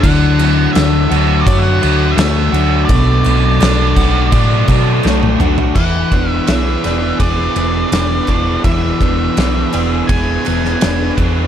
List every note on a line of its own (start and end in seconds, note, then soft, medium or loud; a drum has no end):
0.00 0.66 D2 loud
0.00 1.80 D3 medium
0.00 1.82 F#3 medium
0.00 0.75 D4 medium
0.00 2.11 D4 medium
0.00 2.46 D4 medium
0.00 1.46 D5 medium
0.00 0.72 F#5 loud
0.00 kick loud
0.00 crash medium
0.04 1.82 D3 medium
0.39 2.18 F#3 medium
0.39 1.46 F#4 medium
0.39 crash medium
0.73 1.07 D2 medium
0.73 2.18 A3 medium
0.73 2.53 D4 medium
0.73 1.47 E5 medium
0.73 snare loud
0.73 crash medium
1.10 1.42 D2 medium
1.10 2.51 F#4 medium
1.10 1.81 F#4 medium
1.10 crash medium
1.41 1.62 D5 loud
1.47 1.78 F#2 loud
1.47 2.90 F#4 medium
1.47 2.90 C#5 medium
1.47 kick loud
1.47 crash medium
1.59 2.17 F#5 medium
1.81 2.14 D2 medium
1.81 2.89 D3 medium
1.81 2.90 F#4 medium
1.81 crash medium
2.12 2.85 E5 loud
2.16 2.49 D2 loud
2.16 2.88 A3 medium
2.16 2.89 A3 medium
2.16 2.88 A3 medium
2.16 snare loud
2.16 crash medium
2.52 2.84 D2 loud
2.52 2.90 F#3 medium
2.52 3.60 D4 medium
2.52 2.88 F#4 medium
2.52 crash medium
2.85 4.68 B2 medium
2.85 3.59 A3 medium
2.85 4.98 D5 medium
2.89 3.21 B1 medium
2.89 4.68 B2 medium
2.89 kick loud
2.89 crash medium
3.24 3.57 B1 medium
3.24 5.04 F#3 medium
3.24 4.31 F#4 medium
3.24 crash medium
3.60 3.93 B1 loud
3.60 5.02 A3 medium
3.60 5.39 D4 medium
3.60 4.30 D4 medium
3.60 snare loud
3.60 crash medium
3.96 4.28 B1 medium
3.96 4.67 D4 medium
3.96 5.40 F#4 medium
3.96 4.67 F#4 medium
3.96 kick medium
3.96 crash medium
4.31 4.64 A2 loud
4.31 5.75 D4 medium
4.31 5.76 F#4 medium
4.31 5.76 D5 medium
4.31 kick loud
4.31 crash medium
4.68 5.00 B2 medium
4.68 5.76 F#3 medium
4.68 5.76 D4 medium
4.68 5.76 F#4 medium
4.68 kick medium
4.68 crash medium
5.03 5.36 B1 loud
5.03 5.39 A3 medium
5.03 5.76 A3 medium
5.03 snare medium
5.23 high tom medium
5.40 5.71 B1 medium
5.40 5.76 A3 medium
5.40 5.76 D4 medium
5.40 5.76 F#4 medium
5.40 mid tom medium
5.58 floor tom loud
5.75 6.02 E1 medium
5.75 6.11 E3 medium
5.75 7.56 E3 medium
5.75 6.48 E3 medium
5.75 6.30 F#5 medium
5.75 kick loud
5.75 crash loud
6.12 6.38 E1 medium
6.12 7.92 E3 medium
6.12 6.84 B3 medium
6.12 7.91 D4 medium
6.12 kick medium
6.12 ride medium
6.30 6.47 E5 medium
6.47 6.75 B1 medium
6.47 7.91 E3 medium
6.47 8.28 B3 medium
6.47 7.20 G#4 medium
6.47 7.19 E5 medium
6.47 snare loud
6.47 ride medium
6.84 7.11 E1 medium
6.84 7.56 B3 medium
6.84 7.55 G#4 medium
6.84 8.67 D5 medium
6.84 snare soft
6.84 ride medium
7.20 7.46 E1 medium
7.20 7.92 D4 medium
7.20 8.28 G#4 medium
7.20 9.01 G#4 medium
7.20 8.64 D5 medium
7.20 kick loud
7.20 ride medium
7.56 7.83 E1 medium
7.56 9.36 B3 medium
7.56 9.00 B3 medium
7.56 9.37 G#4 medium
7.56 ride medium
7.92 8.19 E1 medium
7.92 8.65 E3 medium
7.92 9.00 D4 medium
7.92 9.76 D4 medium
7.92 snare loud
7.92 ride medium
8.27 8.55 E1 medium
8.27 8.63 E3 medium
8.27 10.13 D4 medium
8.27 9.36 G#4 medium
8.27 kick medium
8.27 ride medium
8.64 8.91 E1 medium
8.64 9.00 E3 medium
8.64 10.45 E3 medium
8.64 9.36 E3 medium
8.64 10.13 E5 medium
8.64 kick loud
8.64 ride medium
9.00 9.28 E1 medium
9.00 10.82 E3 medium
9.00 9.73 B3 medium
9.00 10.82 D4 medium
9.00 kick medium
9.00 ride medium
9.37 9.64 B1 medium
9.37 10.82 E3 medium
9.37 11.17 B3 medium
9.37 10.09 G#4 medium
9.37 snare medium
9.37 ride medium
9.73 10.00 E1 medium
9.73 10.44 B3 medium
9.73 10.44 G#4 medium
9.73 11.47 D5 medium
9.73 ride medium
10.07 10.36 E1 medium
10.07 10.81 D4 medium
10.07 11.17 G#4 medium
10.07 11.47 G#4 medium
10.07 11.13 G#5 medium
10.07 kick loud
10.07 ride loud
10.45 10.73 E1 medium
10.45 11.47 B3 medium
10.45 11.47 G#4 medium
10.45 ride medium
10.65 snare soft
10.81 11.09 E1 medium
10.81 11.47 E3 medium
10.81 11.47 D4 medium
10.81 snare loud
10.81 ride loud
11.18 11.44 E2 medium
11.18 11.47 E3 medium
11.18 11.47 D4 medium
11.18 11.47 G#4 medium
11.18 kick medium
11.18 ride medium